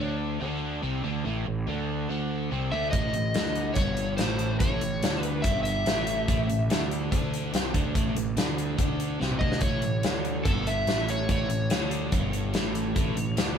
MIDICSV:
0, 0, Header, 1, 5, 480
1, 0, Start_track
1, 0, Key_signature, 3, "major"
1, 0, Tempo, 418702
1, 1431, Time_signature, 4, 2, 24, 8
1, 15568, End_track
2, 0, Start_track
2, 0, Title_t, "Electric slide guitar"
2, 0, Program_c, 0, 29
2, 0, Note_on_c, 0, 73, 83
2, 173, Note_off_c, 0, 73, 0
2, 3115, Note_on_c, 0, 76, 93
2, 3329, Note_off_c, 0, 76, 0
2, 3333, Note_on_c, 0, 75, 93
2, 4263, Note_off_c, 0, 75, 0
2, 4285, Note_on_c, 0, 73, 87
2, 4779, Note_off_c, 0, 73, 0
2, 4783, Note_on_c, 0, 72, 80
2, 5264, Note_off_c, 0, 72, 0
2, 5269, Note_on_c, 0, 73, 83
2, 5991, Note_off_c, 0, 73, 0
2, 5991, Note_on_c, 0, 71, 83
2, 6215, Note_on_c, 0, 76, 88
2, 6265, Note_off_c, 0, 71, 0
2, 6442, Note_off_c, 0, 76, 0
2, 6456, Note_on_c, 0, 76, 90
2, 7861, Note_off_c, 0, 76, 0
2, 10764, Note_on_c, 0, 75, 94
2, 11015, Note_on_c, 0, 73, 81
2, 11024, Note_off_c, 0, 75, 0
2, 11934, Note_off_c, 0, 73, 0
2, 11979, Note_on_c, 0, 69, 85
2, 12229, Note_off_c, 0, 69, 0
2, 12234, Note_on_c, 0, 76, 104
2, 12723, Note_off_c, 0, 76, 0
2, 12723, Note_on_c, 0, 73, 87
2, 12960, Note_off_c, 0, 73, 0
2, 12976, Note_on_c, 0, 73, 84
2, 15568, Note_off_c, 0, 73, 0
2, 15568, End_track
3, 0, Start_track
3, 0, Title_t, "Overdriven electric guitar"
3, 0, Program_c, 1, 29
3, 0, Note_on_c, 1, 50, 82
3, 0, Note_on_c, 1, 62, 102
3, 444, Note_off_c, 1, 50, 0
3, 457, Note_on_c, 1, 50, 92
3, 459, Note_off_c, 1, 62, 0
3, 473, Note_on_c, 1, 62, 114
3, 937, Note_off_c, 1, 50, 0
3, 942, Note_on_c, 1, 48, 83
3, 945, Note_off_c, 1, 62, 0
3, 949, Note_on_c, 1, 60, 87
3, 1176, Note_off_c, 1, 48, 0
3, 1181, Note_on_c, 1, 50, 89
3, 1183, Note_off_c, 1, 60, 0
3, 1191, Note_on_c, 1, 62, 93
3, 1420, Note_off_c, 1, 50, 0
3, 1425, Note_off_c, 1, 62, 0
3, 1426, Note_on_c, 1, 45, 86
3, 1440, Note_on_c, 1, 57, 88
3, 1663, Note_off_c, 1, 45, 0
3, 1670, Note_off_c, 1, 57, 0
3, 1680, Note_on_c, 1, 45, 62
3, 1869, Note_off_c, 1, 45, 0
3, 1917, Note_on_c, 1, 50, 77
3, 1932, Note_on_c, 1, 62, 90
3, 2380, Note_off_c, 1, 50, 0
3, 2392, Note_off_c, 1, 62, 0
3, 2394, Note_on_c, 1, 50, 83
3, 2405, Note_on_c, 1, 62, 103
3, 2870, Note_off_c, 1, 50, 0
3, 2876, Note_off_c, 1, 62, 0
3, 2878, Note_on_c, 1, 48, 83
3, 2889, Note_on_c, 1, 60, 89
3, 3112, Note_off_c, 1, 48, 0
3, 3118, Note_off_c, 1, 60, 0
3, 3123, Note_on_c, 1, 50, 73
3, 3134, Note_on_c, 1, 62, 88
3, 3349, Note_off_c, 1, 50, 0
3, 3354, Note_on_c, 1, 45, 82
3, 3360, Note_off_c, 1, 62, 0
3, 3365, Note_on_c, 1, 57, 89
3, 3590, Note_off_c, 1, 45, 0
3, 3596, Note_off_c, 1, 57, 0
3, 3603, Note_on_c, 1, 45, 58
3, 3794, Note_off_c, 1, 45, 0
3, 3838, Note_on_c, 1, 50, 78
3, 3854, Note_on_c, 1, 62, 85
3, 4314, Note_off_c, 1, 50, 0
3, 4321, Note_on_c, 1, 43, 87
3, 4322, Note_off_c, 1, 62, 0
3, 4333, Note_on_c, 1, 55, 105
3, 4795, Note_off_c, 1, 43, 0
3, 4796, Note_on_c, 1, 45, 79
3, 4801, Note_off_c, 1, 55, 0
3, 4811, Note_on_c, 1, 57, 96
3, 5268, Note_off_c, 1, 45, 0
3, 5280, Note_off_c, 1, 57, 0
3, 5282, Note_on_c, 1, 45, 90
3, 5294, Note_on_c, 1, 57, 90
3, 5512, Note_off_c, 1, 45, 0
3, 5522, Note_off_c, 1, 57, 0
3, 5526, Note_on_c, 1, 45, 62
3, 5717, Note_off_c, 1, 45, 0
3, 5767, Note_on_c, 1, 50, 82
3, 5777, Note_on_c, 1, 62, 95
3, 6238, Note_off_c, 1, 50, 0
3, 6243, Note_off_c, 1, 62, 0
3, 6248, Note_on_c, 1, 43, 92
3, 6258, Note_on_c, 1, 55, 100
3, 6717, Note_on_c, 1, 45, 78
3, 6718, Note_off_c, 1, 43, 0
3, 6723, Note_off_c, 1, 55, 0
3, 6725, Note_on_c, 1, 57, 93
3, 7185, Note_off_c, 1, 45, 0
3, 7195, Note_off_c, 1, 57, 0
3, 7198, Note_on_c, 1, 45, 80
3, 7208, Note_on_c, 1, 57, 95
3, 7432, Note_off_c, 1, 45, 0
3, 7437, Note_off_c, 1, 57, 0
3, 7450, Note_on_c, 1, 45, 61
3, 7637, Note_off_c, 1, 45, 0
3, 7682, Note_on_c, 1, 50, 77
3, 7690, Note_on_c, 1, 62, 90
3, 8140, Note_off_c, 1, 50, 0
3, 8150, Note_off_c, 1, 62, 0
3, 8154, Note_on_c, 1, 50, 101
3, 8164, Note_on_c, 1, 62, 103
3, 8624, Note_off_c, 1, 50, 0
3, 8629, Note_on_c, 1, 48, 80
3, 8633, Note_off_c, 1, 62, 0
3, 8640, Note_on_c, 1, 60, 92
3, 8865, Note_off_c, 1, 48, 0
3, 8871, Note_off_c, 1, 60, 0
3, 8871, Note_on_c, 1, 50, 81
3, 8881, Note_on_c, 1, 62, 84
3, 9101, Note_off_c, 1, 50, 0
3, 9106, Note_on_c, 1, 45, 82
3, 9111, Note_off_c, 1, 62, 0
3, 9118, Note_on_c, 1, 57, 89
3, 9343, Note_off_c, 1, 45, 0
3, 9349, Note_off_c, 1, 57, 0
3, 9360, Note_on_c, 1, 45, 66
3, 9549, Note_off_c, 1, 45, 0
3, 9592, Note_on_c, 1, 50, 77
3, 9597, Note_on_c, 1, 62, 96
3, 10045, Note_off_c, 1, 50, 0
3, 10057, Note_off_c, 1, 62, 0
3, 10059, Note_on_c, 1, 50, 102
3, 10070, Note_on_c, 1, 62, 108
3, 10536, Note_off_c, 1, 50, 0
3, 10541, Note_on_c, 1, 48, 85
3, 10543, Note_off_c, 1, 62, 0
3, 10555, Note_on_c, 1, 60, 96
3, 10776, Note_off_c, 1, 48, 0
3, 10780, Note_on_c, 1, 50, 83
3, 10785, Note_off_c, 1, 60, 0
3, 10792, Note_on_c, 1, 62, 83
3, 11018, Note_off_c, 1, 50, 0
3, 11023, Note_off_c, 1, 62, 0
3, 11027, Note_on_c, 1, 45, 82
3, 11037, Note_on_c, 1, 57, 95
3, 11261, Note_off_c, 1, 45, 0
3, 11266, Note_off_c, 1, 57, 0
3, 11273, Note_on_c, 1, 45, 66
3, 11463, Note_off_c, 1, 45, 0
3, 11501, Note_on_c, 1, 50, 82
3, 11512, Note_on_c, 1, 62, 89
3, 11976, Note_off_c, 1, 50, 0
3, 11977, Note_on_c, 1, 43, 97
3, 11981, Note_off_c, 1, 62, 0
3, 11989, Note_on_c, 1, 55, 107
3, 12453, Note_off_c, 1, 43, 0
3, 12460, Note_off_c, 1, 55, 0
3, 12465, Note_on_c, 1, 45, 84
3, 12472, Note_on_c, 1, 57, 82
3, 12920, Note_off_c, 1, 45, 0
3, 12929, Note_off_c, 1, 57, 0
3, 12934, Note_on_c, 1, 45, 85
3, 12943, Note_on_c, 1, 57, 98
3, 13168, Note_off_c, 1, 45, 0
3, 13176, Note_off_c, 1, 57, 0
3, 13182, Note_on_c, 1, 45, 63
3, 13414, Note_off_c, 1, 45, 0
3, 13414, Note_on_c, 1, 50, 82
3, 13422, Note_on_c, 1, 62, 94
3, 13883, Note_on_c, 1, 43, 88
3, 13891, Note_off_c, 1, 50, 0
3, 13894, Note_off_c, 1, 62, 0
3, 13896, Note_on_c, 1, 55, 111
3, 14365, Note_off_c, 1, 43, 0
3, 14368, Note_on_c, 1, 45, 88
3, 14371, Note_off_c, 1, 55, 0
3, 14381, Note_on_c, 1, 57, 88
3, 14834, Note_off_c, 1, 45, 0
3, 14848, Note_off_c, 1, 57, 0
3, 14848, Note_on_c, 1, 45, 91
3, 14862, Note_on_c, 1, 57, 92
3, 15078, Note_off_c, 1, 45, 0
3, 15092, Note_on_c, 1, 45, 63
3, 15094, Note_off_c, 1, 57, 0
3, 15288, Note_off_c, 1, 45, 0
3, 15331, Note_on_c, 1, 50, 82
3, 15342, Note_on_c, 1, 62, 94
3, 15568, Note_off_c, 1, 50, 0
3, 15568, Note_off_c, 1, 62, 0
3, 15568, End_track
4, 0, Start_track
4, 0, Title_t, "Picked electric bass"
4, 0, Program_c, 2, 34
4, 0, Note_on_c, 2, 38, 88
4, 435, Note_off_c, 2, 38, 0
4, 473, Note_on_c, 2, 38, 83
4, 919, Note_off_c, 2, 38, 0
4, 954, Note_on_c, 2, 36, 81
4, 1176, Note_off_c, 2, 36, 0
4, 1194, Note_on_c, 2, 38, 85
4, 1417, Note_off_c, 2, 38, 0
4, 1440, Note_on_c, 2, 33, 90
4, 1660, Note_off_c, 2, 33, 0
4, 1683, Note_on_c, 2, 33, 68
4, 1903, Note_off_c, 2, 33, 0
4, 1921, Note_on_c, 2, 38, 85
4, 2367, Note_off_c, 2, 38, 0
4, 2408, Note_on_c, 2, 38, 84
4, 2851, Note_off_c, 2, 38, 0
4, 2890, Note_on_c, 2, 36, 79
4, 3108, Note_off_c, 2, 36, 0
4, 3124, Note_on_c, 2, 38, 89
4, 3346, Note_off_c, 2, 38, 0
4, 3362, Note_on_c, 2, 33, 88
4, 3585, Note_off_c, 2, 33, 0
4, 3620, Note_on_c, 2, 33, 75
4, 3835, Note_off_c, 2, 33, 0
4, 3849, Note_on_c, 2, 38, 84
4, 4293, Note_off_c, 2, 38, 0
4, 4320, Note_on_c, 2, 31, 84
4, 4768, Note_off_c, 2, 31, 0
4, 4807, Note_on_c, 2, 33, 80
4, 5252, Note_off_c, 2, 33, 0
4, 5283, Note_on_c, 2, 33, 90
4, 5507, Note_off_c, 2, 33, 0
4, 5527, Note_on_c, 2, 33, 69
4, 5749, Note_off_c, 2, 33, 0
4, 5773, Note_on_c, 2, 38, 81
4, 6215, Note_off_c, 2, 38, 0
4, 6241, Note_on_c, 2, 31, 86
4, 6688, Note_off_c, 2, 31, 0
4, 6725, Note_on_c, 2, 33, 83
4, 7169, Note_off_c, 2, 33, 0
4, 7208, Note_on_c, 2, 33, 89
4, 7428, Note_off_c, 2, 33, 0
4, 7437, Note_on_c, 2, 33, 70
4, 7662, Note_off_c, 2, 33, 0
4, 7686, Note_on_c, 2, 38, 86
4, 8129, Note_off_c, 2, 38, 0
4, 8163, Note_on_c, 2, 38, 88
4, 8606, Note_off_c, 2, 38, 0
4, 8636, Note_on_c, 2, 36, 76
4, 8860, Note_off_c, 2, 36, 0
4, 8880, Note_on_c, 2, 38, 86
4, 9101, Note_off_c, 2, 38, 0
4, 9119, Note_on_c, 2, 33, 86
4, 9340, Note_off_c, 2, 33, 0
4, 9364, Note_on_c, 2, 33, 71
4, 9582, Note_off_c, 2, 33, 0
4, 9596, Note_on_c, 2, 38, 80
4, 10040, Note_off_c, 2, 38, 0
4, 10071, Note_on_c, 2, 38, 89
4, 10517, Note_off_c, 2, 38, 0
4, 10563, Note_on_c, 2, 36, 84
4, 10780, Note_off_c, 2, 36, 0
4, 10786, Note_on_c, 2, 38, 88
4, 11010, Note_off_c, 2, 38, 0
4, 11029, Note_on_c, 2, 33, 83
4, 11252, Note_off_c, 2, 33, 0
4, 11285, Note_on_c, 2, 33, 69
4, 11500, Note_off_c, 2, 33, 0
4, 11516, Note_on_c, 2, 38, 83
4, 11958, Note_off_c, 2, 38, 0
4, 11985, Note_on_c, 2, 31, 89
4, 12431, Note_off_c, 2, 31, 0
4, 12465, Note_on_c, 2, 33, 84
4, 12910, Note_off_c, 2, 33, 0
4, 12946, Note_on_c, 2, 33, 84
4, 13168, Note_off_c, 2, 33, 0
4, 13181, Note_on_c, 2, 33, 71
4, 13405, Note_off_c, 2, 33, 0
4, 13421, Note_on_c, 2, 38, 82
4, 13868, Note_off_c, 2, 38, 0
4, 13904, Note_on_c, 2, 31, 85
4, 14348, Note_off_c, 2, 31, 0
4, 14375, Note_on_c, 2, 33, 81
4, 14824, Note_off_c, 2, 33, 0
4, 14860, Note_on_c, 2, 33, 90
4, 15083, Note_off_c, 2, 33, 0
4, 15094, Note_on_c, 2, 33, 75
4, 15320, Note_off_c, 2, 33, 0
4, 15337, Note_on_c, 2, 38, 91
4, 15568, Note_off_c, 2, 38, 0
4, 15568, End_track
5, 0, Start_track
5, 0, Title_t, "Drums"
5, 3358, Note_on_c, 9, 42, 73
5, 3360, Note_on_c, 9, 36, 102
5, 3473, Note_off_c, 9, 42, 0
5, 3475, Note_off_c, 9, 36, 0
5, 3595, Note_on_c, 9, 42, 52
5, 3709, Note_off_c, 9, 42, 0
5, 3833, Note_on_c, 9, 42, 72
5, 3847, Note_on_c, 9, 38, 109
5, 3948, Note_off_c, 9, 42, 0
5, 3962, Note_off_c, 9, 38, 0
5, 3971, Note_on_c, 9, 38, 29
5, 4074, Note_on_c, 9, 42, 54
5, 4086, Note_off_c, 9, 38, 0
5, 4189, Note_off_c, 9, 42, 0
5, 4305, Note_on_c, 9, 42, 74
5, 4315, Note_on_c, 9, 36, 101
5, 4419, Note_off_c, 9, 42, 0
5, 4430, Note_off_c, 9, 36, 0
5, 4549, Note_on_c, 9, 42, 61
5, 4664, Note_off_c, 9, 42, 0
5, 4791, Note_on_c, 9, 42, 75
5, 4804, Note_on_c, 9, 38, 95
5, 4905, Note_off_c, 9, 42, 0
5, 4919, Note_off_c, 9, 38, 0
5, 5030, Note_on_c, 9, 42, 59
5, 5145, Note_off_c, 9, 42, 0
5, 5276, Note_on_c, 9, 42, 82
5, 5278, Note_on_c, 9, 36, 105
5, 5390, Note_off_c, 9, 42, 0
5, 5392, Note_off_c, 9, 36, 0
5, 5518, Note_on_c, 9, 42, 55
5, 5633, Note_off_c, 9, 42, 0
5, 5761, Note_on_c, 9, 42, 82
5, 5775, Note_on_c, 9, 38, 103
5, 5876, Note_off_c, 9, 42, 0
5, 5890, Note_off_c, 9, 38, 0
5, 5900, Note_on_c, 9, 38, 27
5, 5996, Note_on_c, 9, 42, 60
5, 6014, Note_off_c, 9, 38, 0
5, 6111, Note_off_c, 9, 42, 0
5, 6235, Note_on_c, 9, 42, 77
5, 6239, Note_on_c, 9, 36, 96
5, 6350, Note_off_c, 9, 42, 0
5, 6354, Note_off_c, 9, 36, 0
5, 6480, Note_on_c, 9, 42, 55
5, 6595, Note_off_c, 9, 42, 0
5, 6719, Note_on_c, 9, 42, 67
5, 6733, Note_on_c, 9, 38, 98
5, 6834, Note_off_c, 9, 42, 0
5, 6848, Note_off_c, 9, 38, 0
5, 6957, Note_on_c, 9, 42, 58
5, 7072, Note_off_c, 9, 42, 0
5, 7203, Note_on_c, 9, 42, 76
5, 7204, Note_on_c, 9, 36, 98
5, 7318, Note_off_c, 9, 36, 0
5, 7318, Note_off_c, 9, 42, 0
5, 7446, Note_on_c, 9, 42, 53
5, 7561, Note_off_c, 9, 42, 0
5, 7683, Note_on_c, 9, 42, 78
5, 7697, Note_on_c, 9, 38, 109
5, 7798, Note_off_c, 9, 42, 0
5, 7812, Note_off_c, 9, 38, 0
5, 7927, Note_on_c, 9, 42, 52
5, 8042, Note_off_c, 9, 42, 0
5, 8164, Note_on_c, 9, 36, 93
5, 8165, Note_on_c, 9, 42, 71
5, 8278, Note_off_c, 9, 36, 0
5, 8280, Note_off_c, 9, 42, 0
5, 8410, Note_on_c, 9, 42, 60
5, 8525, Note_off_c, 9, 42, 0
5, 8640, Note_on_c, 9, 42, 74
5, 8654, Note_on_c, 9, 38, 92
5, 8755, Note_off_c, 9, 42, 0
5, 8769, Note_off_c, 9, 38, 0
5, 8877, Note_on_c, 9, 36, 97
5, 8880, Note_on_c, 9, 42, 60
5, 8992, Note_off_c, 9, 36, 0
5, 8995, Note_off_c, 9, 42, 0
5, 9117, Note_on_c, 9, 36, 103
5, 9121, Note_on_c, 9, 42, 83
5, 9231, Note_off_c, 9, 36, 0
5, 9236, Note_off_c, 9, 42, 0
5, 9361, Note_on_c, 9, 42, 62
5, 9475, Note_off_c, 9, 42, 0
5, 9596, Note_on_c, 9, 42, 84
5, 9609, Note_on_c, 9, 38, 105
5, 9710, Note_off_c, 9, 42, 0
5, 9724, Note_off_c, 9, 38, 0
5, 9840, Note_on_c, 9, 42, 59
5, 9955, Note_off_c, 9, 42, 0
5, 10072, Note_on_c, 9, 36, 97
5, 10074, Note_on_c, 9, 42, 87
5, 10186, Note_off_c, 9, 36, 0
5, 10189, Note_off_c, 9, 42, 0
5, 10315, Note_on_c, 9, 42, 63
5, 10430, Note_off_c, 9, 42, 0
5, 10563, Note_on_c, 9, 38, 54
5, 10669, Note_on_c, 9, 47, 55
5, 10678, Note_off_c, 9, 38, 0
5, 10784, Note_off_c, 9, 47, 0
5, 10786, Note_on_c, 9, 36, 80
5, 10900, Note_off_c, 9, 36, 0
5, 10912, Note_on_c, 9, 38, 80
5, 11013, Note_on_c, 9, 42, 82
5, 11024, Note_on_c, 9, 36, 102
5, 11026, Note_off_c, 9, 38, 0
5, 11127, Note_off_c, 9, 42, 0
5, 11138, Note_off_c, 9, 36, 0
5, 11256, Note_on_c, 9, 42, 53
5, 11371, Note_off_c, 9, 42, 0
5, 11502, Note_on_c, 9, 42, 77
5, 11516, Note_on_c, 9, 38, 109
5, 11617, Note_off_c, 9, 42, 0
5, 11630, Note_off_c, 9, 38, 0
5, 11748, Note_on_c, 9, 42, 52
5, 11863, Note_off_c, 9, 42, 0
5, 11984, Note_on_c, 9, 42, 72
5, 11985, Note_on_c, 9, 36, 101
5, 12099, Note_off_c, 9, 42, 0
5, 12100, Note_off_c, 9, 36, 0
5, 12230, Note_on_c, 9, 42, 56
5, 12345, Note_off_c, 9, 42, 0
5, 12465, Note_on_c, 9, 42, 67
5, 12479, Note_on_c, 9, 38, 94
5, 12580, Note_off_c, 9, 42, 0
5, 12593, Note_off_c, 9, 38, 0
5, 12708, Note_on_c, 9, 42, 58
5, 12823, Note_off_c, 9, 42, 0
5, 12942, Note_on_c, 9, 42, 78
5, 12943, Note_on_c, 9, 36, 99
5, 13057, Note_off_c, 9, 42, 0
5, 13058, Note_off_c, 9, 36, 0
5, 13181, Note_on_c, 9, 42, 56
5, 13295, Note_off_c, 9, 42, 0
5, 13414, Note_on_c, 9, 42, 82
5, 13427, Note_on_c, 9, 38, 105
5, 13528, Note_off_c, 9, 42, 0
5, 13542, Note_off_c, 9, 38, 0
5, 13656, Note_on_c, 9, 42, 63
5, 13770, Note_off_c, 9, 42, 0
5, 13896, Note_on_c, 9, 42, 77
5, 13899, Note_on_c, 9, 36, 101
5, 14010, Note_off_c, 9, 42, 0
5, 14013, Note_off_c, 9, 36, 0
5, 14138, Note_on_c, 9, 42, 65
5, 14253, Note_off_c, 9, 42, 0
5, 14372, Note_on_c, 9, 42, 76
5, 14386, Note_on_c, 9, 38, 93
5, 14487, Note_off_c, 9, 42, 0
5, 14501, Note_off_c, 9, 38, 0
5, 14617, Note_on_c, 9, 42, 62
5, 14732, Note_off_c, 9, 42, 0
5, 14856, Note_on_c, 9, 42, 78
5, 14858, Note_on_c, 9, 36, 102
5, 14971, Note_off_c, 9, 42, 0
5, 14973, Note_off_c, 9, 36, 0
5, 15096, Note_on_c, 9, 42, 60
5, 15211, Note_off_c, 9, 42, 0
5, 15329, Note_on_c, 9, 42, 76
5, 15343, Note_on_c, 9, 38, 107
5, 15444, Note_off_c, 9, 42, 0
5, 15457, Note_off_c, 9, 38, 0
5, 15568, End_track
0, 0, End_of_file